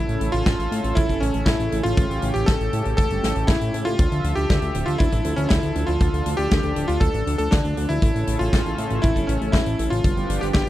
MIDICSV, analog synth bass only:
0, 0, Header, 1, 2, 480
1, 0, Start_track
1, 0, Key_signature, -1, "minor"
1, 0, Tempo, 504202
1, 1879, Time_signature, 4, 2, 24, 8
1, 10179, End_track
2, 0, Start_track
2, 0, Title_t, "Analog synth bass"
2, 0, Program_c, 0, 38
2, 80, Note_on_c, 0, 33, 77
2, 167, Note_off_c, 0, 33, 0
2, 200, Note_on_c, 0, 33, 94
2, 286, Note_off_c, 0, 33, 0
2, 321, Note_on_c, 0, 33, 85
2, 407, Note_off_c, 0, 33, 0
2, 440, Note_on_c, 0, 33, 102
2, 527, Note_off_c, 0, 33, 0
2, 560, Note_on_c, 0, 33, 76
2, 647, Note_off_c, 0, 33, 0
2, 681, Note_on_c, 0, 45, 93
2, 767, Note_off_c, 0, 45, 0
2, 799, Note_on_c, 0, 33, 86
2, 886, Note_off_c, 0, 33, 0
2, 922, Note_on_c, 0, 33, 101
2, 1008, Note_off_c, 0, 33, 0
2, 1041, Note_on_c, 0, 31, 76
2, 1127, Note_off_c, 0, 31, 0
2, 1159, Note_on_c, 0, 33, 101
2, 1246, Note_off_c, 0, 33, 0
2, 1280, Note_on_c, 0, 33, 77
2, 1367, Note_off_c, 0, 33, 0
2, 1392, Note_on_c, 0, 33, 99
2, 1482, Note_off_c, 0, 33, 0
2, 1520, Note_on_c, 0, 33, 72
2, 1607, Note_off_c, 0, 33, 0
2, 1642, Note_on_c, 0, 33, 94
2, 1727, Note_off_c, 0, 33, 0
2, 1760, Note_on_c, 0, 33, 82
2, 1847, Note_off_c, 0, 33, 0
2, 1879, Note_on_c, 0, 33, 101
2, 1966, Note_off_c, 0, 33, 0
2, 1999, Note_on_c, 0, 33, 74
2, 2086, Note_off_c, 0, 33, 0
2, 2120, Note_on_c, 0, 33, 88
2, 2207, Note_off_c, 0, 33, 0
2, 2239, Note_on_c, 0, 33, 81
2, 2326, Note_off_c, 0, 33, 0
2, 2362, Note_on_c, 0, 33, 109
2, 2447, Note_off_c, 0, 33, 0
2, 2480, Note_on_c, 0, 33, 75
2, 2566, Note_off_c, 0, 33, 0
2, 2600, Note_on_c, 0, 45, 95
2, 2687, Note_off_c, 0, 45, 0
2, 2721, Note_on_c, 0, 33, 86
2, 2807, Note_off_c, 0, 33, 0
2, 2838, Note_on_c, 0, 33, 100
2, 2925, Note_off_c, 0, 33, 0
2, 2960, Note_on_c, 0, 31, 72
2, 3047, Note_off_c, 0, 31, 0
2, 3079, Note_on_c, 0, 33, 99
2, 3166, Note_off_c, 0, 33, 0
2, 3199, Note_on_c, 0, 33, 82
2, 3286, Note_off_c, 0, 33, 0
2, 3314, Note_on_c, 0, 33, 100
2, 3404, Note_off_c, 0, 33, 0
2, 3439, Note_on_c, 0, 45, 77
2, 3526, Note_off_c, 0, 45, 0
2, 3560, Note_on_c, 0, 45, 88
2, 3647, Note_off_c, 0, 45, 0
2, 3680, Note_on_c, 0, 45, 80
2, 3767, Note_off_c, 0, 45, 0
2, 3800, Note_on_c, 0, 38, 100
2, 3887, Note_off_c, 0, 38, 0
2, 3919, Note_on_c, 0, 38, 72
2, 4006, Note_off_c, 0, 38, 0
2, 4039, Note_on_c, 0, 38, 93
2, 4126, Note_off_c, 0, 38, 0
2, 4159, Note_on_c, 0, 38, 78
2, 4246, Note_off_c, 0, 38, 0
2, 4285, Note_on_c, 0, 38, 104
2, 4369, Note_off_c, 0, 38, 0
2, 4399, Note_on_c, 0, 38, 74
2, 4486, Note_off_c, 0, 38, 0
2, 4519, Note_on_c, 0, 26, 94
2, 4606, Note_off_c, 0, 26, 0
2, 4638, Note_on_c, 0, 38, 85
2, 4726, Note_off_c, 0, 38, 0
2, 4761, Note_on_c, 0, 38, 98
2, 4847, Note_off_c, 0, 38, 0
2, 4879, Note_on_c, 0, 33, 76
2, 4966, Note_off_c, 0, 33, 0
2, 4998, Note_on_c, 0, 38, 98
2, 5086, Note_off_c, 0, 38, 0
2, 5118, Note_on_c, 0, 38, 78
2, 5206, Note_off_c, 0, 38, 0
2, 5248, Note_on_c, 0, 38, 106
2, 5331, Note_off_c, 0, 38, 0
2, 5359, Note_on_c, 0, 38, 80
2, 5446, Note_off_c, 0, 38, 0
2, 5479, Note_on_c, 0, 38, 89
2, 5566, Note_off_c, 0, 38, 0
2, 5599, Note_on_c, 0, 38, 80
2, 5686, Note_off_c, 0, 38, 0
2, 5719, Note_on_c, 0, 38, 104
2, 5806, Note_off_c, 0, 38, 0
2, 5839, Note_on_c, 0, 38, 75
2, 5926, Note_off_c, 0, 38, 0
2, 5958, Note_on_c, 0, 38, 93
2, 6046, Note_off_c, 0, 38, 0
2, 6078, Note_on_c, 0, 38, 82
2, 6166, Note_off_c, 0, 38, 0
2, 6204, Note_on_c, 0, 38, 106
2, 6289, Note_off_c, 0, 38, 0
2, 6318, Note_on_c, 0, 38, 74
2, 6406, Note_off_c, 0, 38, 0
2, 6438, Note_on_c, 0, 26, 95
2, 6525, Note_off_c, 0, 26, 0
2, 6557, Note_on_c, 0, 38, 80
2, 6645, Note_off_c, 0, 38, 0
2, 6673, Note_on_c, 0, 38, 98
2, 6763, Note_off_c, 0, 38, 0
2, 6798, Note_on_c, 0, 33, 76
2, 6886, Note_off_c, 0, 33, 0
2, 6919, Note_on_c, 0, 38, 97
2, 7006, Note_off_c, 0, 38, 0
2, 7038, Note_on_c, 0, 38, 80
2, 7126, Note_off_c, 0, 38, 0
2, 7166, Note_on_c, 0, 38, 100
2, 7250, Note_off_c, 0, 38, 0
2, 7279, Note_on_c, 0, 38, 80
2, 7366, Note_off_c, 0, 38, 0
2, 7398, Note_on_c, 0, 38, 90
2, 7486, Note_off_c, 0, 38, 0
2, 7518, Note_on_c, 0, 38, 79
2, 7606, Note_off_c, 0, 38, 0
2, 7638, Note_on_c, 0, 33, 96
2, 7726, Note_off_c, 0, 33, 0
2, 7759, Note_on_c, 0, 33, 76
2, 7846, Note_off_c, 0, 33, 0
2, 7879, Note_on_c, 0, 33, 86
2, 7966, Note_off_c, 0, 33, 0
2, 8000, Note_on_c, 0, 33, 76
2, 8086, Note_off_c, 0, 33, 0
2, 8120, Note_on_c, 0, 33, 105
2, 8207, Note_off_c, 0, 33, 0
2, 8241, Note_on_c, 0, 33, 73
2, 8327, Note_off_c, 0, 33, 0
2, 8360, Note_on_c, 0, 45, 97
2, 8447, Note_off_c, 0, 45, 0
2, 8479, Note_on_c, 0, 33, 81
2, 8566, Note_off_c, 0, 33, 0
2, 8604, Note_on_c, 0, 33, 99
2, 8689, Note_off_c, 0, 33, 0
2, 8719, Note_on_c, 0, 31, 74
2, 8806, Note_off_c, 0, 31, 0
2, 8841, Note_on_c, 0, 33, 99
2, 8927, Note_off_c, 0, 33, 0
2, 8960, Note_on_c, 0, 33, 80
2, 9047, Note_off_c, 0, 33, 0
2, 9075, Note_on_c, 0, 33, 100
2, 9164, Note_off_c, 0, 33, 0
2, 9200, Note_on_c, 0, 33, 79
2, 9287, Note_off_c, 0, 33, 0
2, 9320, Note_on_c, 0, 33, 87
2, 9407, Note_off_c, 0, 33, 0
2, 9439, Note_on_c, 0, 33, 80
2, 9526, Note_off_c, 0, 33, 0
2, 9561, Note_on_c, 0, 31, 102
2, 9647, Note_off_c, 0, 31, 0
2, 9680, Note_on_c, 0, 31, 74
2, 9767, Note_off_c, 0, 31, 0
2, 9799, Note_on_c, 0, 31, 87
2, 9886, Note_off_c, 0, 31, 0
2, 9919, Note_on_c, 0, 31, 78
2, 10006, Note_off_c, 0, 31, 0
2, 10040, Note_on_c, 0, 31, 109
2, 10127, Note_off_c, 0, 31, 0
2, 10179, End_track
0, 0, End_of_file